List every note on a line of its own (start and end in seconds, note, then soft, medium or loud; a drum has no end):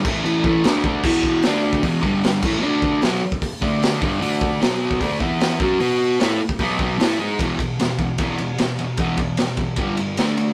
0.05 0.23 A2 loud
0.05 0.24 E3 loud
0.05 0.24 A3 loud
0.05 kick loud
0.05 crash loud
0.24 0.45 A2 medium
0.24 0.45 E3 loud
0.24 0.46 A3 loud
0.24 crash medium
0.44 0.64 A2 medium
0.44 0.64 E3 loud
0.44 0.64 A3 loud
0.44 kick medium
0.64 0.83 D3 medium
0.64 0.84 A3 loud
0.64 0.85 D4 loud
0.64 snare loud
0.64 crash medium
0.84 1.03 D3 medium
0.84 1.03 A3 medium
0.84 1.04 D4 medium
0.84 kick medium
1.04 1.43 E2 medium
1.04 1.43 B2 medium
1.04 1.44 E3 loud
1.04 kick loud
1.04 crash loud
1.23 kick medium
1.42 1.84 D3 medium
1.42 1.84 A3 medium
1.42 snare loud
1.42 open hi-hat medium
1.47 1.84 D4 loud
1.73 kick medium
1.83 2.03 E2 medium
1.83 2.04 B2 loud
1.83 2.04 E3 loud
1.83 kick loud
1.83 open hi-hat medium
2.03 2.42 G2 medium
2.03 2.43 D3 medium
2.03 2.43 G3 loud
2.03 kick medium
2.23 snare loud
2.23 open hi-hat medium
2.43 2.63 A2 medium
2.43 2.63 E3 medium
2.43 2.63 A3 loud
2.43 kick loud
2.43 crash loud
2.63 3.02 D3 loud
2.63 3.02 A3 loud
2.63 3.03 D4 loud
2.82 kick medium
3.02 3.22 B2 medium
3.02 3.22 F#3 loud
3.02 3.23 B3 loud
3.02 snare loud
3.02 open hi-hat medium
3.32 kick medium
3.42 kick medium
3.42 open hi-hat medium
3.62 4.01 D3 medium
3.62 4.01 A3 medium
3.62 4.02 D4 loud
3.62 kick medium
3.82 snare loud
3.82 open hi-hat medium
4.02 4.21 G2 loud
4.02 4.19 D3 medium
4.02 4.20 G3 loud
4.02 kick loud
4.20 4.60 D3 loud
4.20 4.60 A3 loud
4.20 4.61 D4 loud
4.20 open hi-hat medium
4.41 kick medium
4.61 5.00 B2 medium
4.61 5.00 F#3 loud
4.61 5.01 B3 medium
4.61 snare loud
4.61 open hi-hat medium
4.91 kick medium
5.01 5.19 D3 loud
5.01 5.20 A3 loud
5.01 5.20 D4 loud
5.01 kick medium
5.01 open hi-hat medium
5.20 5.59 E3 medium
5.20 5.60 B3 loud
5.20 5.60 E4 loud
5.20 kick medium
5.40 snare loud
5.40 open hi-hat medium
5.60 5.79 F#3 medium
5.60 5.80 C#4 loud
5.60 5.79 F#4 loud
5.60 kick loud
5.80 6.19 B3 medium
5.80 6.19 F#4 loud
5.80 6.20 B4 loud
5.80 open hi-hat medium
6.20 6.39 A3 loud
6.20 6.39 E4 loud
6.20 6.40 A4 loud
6.20 snare loud
6.20 open hi-hat medium
6.49 kick medium
6.59 6.98 B2 loud
6.59 6.98 F#3 loud
6.59 6.99 B3 loud
6.59 kick medium
6.59 open hi-hat medium
6.79 kick medium
6.98 7.18 A3 medium
6.98 7.18 E4 loud
6.98 7.19 A4 loud
6.98 snare loud
6.98 open hi-hat medium
7.19 7.38 G#3 medium
7.19 7.39 D#4 medium
7.19 7.39 G#4 loud
7.39 7.58 E2 medium
7.39 7.58 B2 medium
7.39 7.58 E3 medium
7.39 kick loud
7.39 ride medium
7.59 7.77 E2 medium
7.59 7.77 B2 medium
7.59 kick medium
7.59 ride medium
7.79 7.97 E2 medium
7.79 7.97 B2 medium
7.79 snare loud
7.79 ride medium
7.98 8.17 E2 medium
7.98 8.17 B2 medium
7.98 kick medium
7.98 ride medium
8.18 8.37 E2 medium
8.18 8.37 B2 loud
8.18 8.38 E3 loud
8.18 kick loud
8.18 ride medium
8.38 8.56 E2 medium
8.38 8.57 B2 medium
8.38 ride medium
8.58 8.76 E2 medium
8.58 8.76 B2 medium
8.58 snare loud
8.58 ride medium
8.79 8.96 E2 medium
8.79 8.97 B2 medium
8.79 ride medium
8.97 9.17 E2 medium
8.97 9.17 B2 medium
8.97 9.18 E3 loud
8.97 kick loud
8.97 ride medium
9.17 9.36 E2 medium
9.17 9.36 B2 medium
9.17 kick medium
9.17 ride medium
9.37 9.56 E2 medium
9.37 9.57 B2 medium
9.37 snare loud
9.37 ride medium
9.57 9.76 E2 medium
9.57 9.76 B2 medium
9.57 kick medium
9.57 ride medium
9.76 9.97 G2 medium
9.76 9.97 D3 medium
9.76 9.97 G3 loud
9.76 kick loud
9.76 ride medium
9.97 10.16 G2 medium
9.97 10.16 D3 medium
9.97 ride medium
10.17 10.37 D3 medium
10.17 10.37 A3 medium
10.17 10.37 D4 loud
10.17 snare loud
10.17 ride medium
10.37 10.53 D3 medium
10.37 10.53 A3 medium
10.37 ride medium